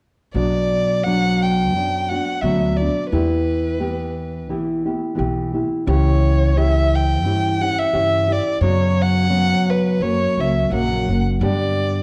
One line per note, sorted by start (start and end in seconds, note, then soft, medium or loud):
0.34 1.73 B1 medium
0.34 1.04 B2 medium
0.34 1.05 F#3 medium
0.34 1.05 B3 medium
0.34 1.05 D4 medium
0.34 1.05 F#4 medium
0.34 1.05 D5 medium
1.03 1.75 B2 soft
1.03 1.75 F#3 medium
1.03 1.77 B3 soft
1.03 1.75 D4 soft
1.03 1.44 F#5 medium
1.42 2.11 G5 medium
1.73 2.18 F#2 medium
1.73 2.12 F#3 soft
1.73 2.10 D4 soft
1.77 2.11 B3 soft
2.09 2.42 B3 soft
2.09 2.43 D4 soft
2.09 2.43 F#4 soft
2.09 2.43 F#5 medium
2.41 2.88 D2 medium
2.41 2.80 B2 medium
2.41 2.81 F#3 medium
2.41 2.80 B3 medium
2.41 2.80 D4 soft
2.41 2.78 F#4 medium
2.41 2.79 E5 medium
2.77 3.12 F#4 soft
2.77 3.10 D5 medium
2.81 3.11 B3 soft
2.81 3.12 D4 soft
3.11 4.50 E2 medium
3.11 3.80 E3 medium
3.11 3.79 B3 medium
3.11 3.80 E4 medium
3.11 3.80 G4 medium
3.11 4.45 B4 medium
3.80 4.49 E3 soft
3.80 4.48 B3 soft
3.80 4.50 E4 soft
3.80 4.50 G4 medium
4.49 4.95 B1 medium
4.49 4.86 E3 soft
4.49 4.86 B3 medium
4.49 4.85 E4 medium
4.49 4.84 G4 medium
4.85 5.14 B3 soft
4.85 5.15 E4 soft
4.85 5.16 G4 soft
5.15 5.63 B1 medium
5.15 5.53 E3 medium
5.15 5.54 B3 soft
5.15 5.53 E4 medium
5.15 5.52 G4 medium
5.53 5.87 B3 soft
5.53 5.86 E4 soft
5.53 5.86 G4 soft
5.87 7.24 C#2 medium
5.87 6.54 C#3 medium
5.87 6.55 E3 medium
5.87 6.57 C#4 medium
5.87 6.56 E4 medium
5.87 6.56 G4 medium
5.87 6.58 C#5 medium
6.55 7.24 C#3 soft
6.55 7.23 E3 medium
6.55 7.25 C#4 medium
6.55 7.25 E4 medium
6.55 7.25 G4 medium
6.55 6.97 E5 medium
6.95 7.63 G5 medium
7.24 7.69 G2 medium
7.24 7.61 E3 soft
7.24 7.61 C#4 soft
7.24 7.60 E4 medium
7.24 7.60 G4 medium
7.61 7.93 C#4 soft
7.61 7.93 E4 soft
7.61 7.92 G4 soft
7.61 7.80 F#5 medium
7.79 8.34 E5 medium
7.93 8.38 G2 medium
7.93 8.30 C#3 soft
7.93 8.30 E3 soft
7.93 8.30 C#4 medium
7.93 8.28 E4 soft
7.93 8.26 G4 medium
8.28 8.62 E4 soft
8.28 8.61 G4 soft
8.32 8.63 D5 medium
8.61 9.52 F#2 medium
8.61 9.28 F#2 medium
8.61 9.29 C#3 medium
8.61 9.30 F#3 medium
8.61 9.28 B3 medium
8.61 9.30 C#4 medium
8.61 9.30 F#4 medium
8.61 9.04 C#5 medium
9.02 9.71 F#5 medium
9.29 10.00 F#2 soft
9.29 10.00 C#3 soft
9.29 10.01 F#3 medium
9.29 10.00 B3 medium
9.29 10.00 C#4 medium
9.29 10.01 F#4 soft
9.70 10.03 B4 medium
10.00 10.25 F#2 medium
10.00 10.39 F#3 soft
10.00 10.39 A#3 medium
10.00 10.39 C#4 soft
10.00 10.38 F#4 soft
10.00 10.42 C#5 medium
10.37 10.67 C#2 medium
10.37 10.71 F#3 soft
10.37 10.72 A#3 soft
10.37 10.71 C#4 soft
10.37 10.71 F#4 soft
10.37 10.72 E5 medium
10.70 11.05 A#1 medium
10.70 11.09 F#2 medium
10.70 11.09 C#3 medium
10.70 11.09 F#3 medium
10.70 11.09 A#3 soft
10.70 11.09 C#4 medium
10.70 11.08 F#4 medium
10.70 11.23 F#5 medium
11.08 11.38 F#1 medium
11.08 11.42 F#3 soft
11.08 11.41 A#3 soft
11.08 11.42 C#4 soft
11.08 11.42 F#4 soft
11.41 12.03 G2 medium
11.41 12.03 D3 medium
11.41 12.03 G3 medium
11.41 12.03 B3 medium
11.41 12.03 D4 medium
11.41 12.03 G4 medium
11.41 12.03 D5 medium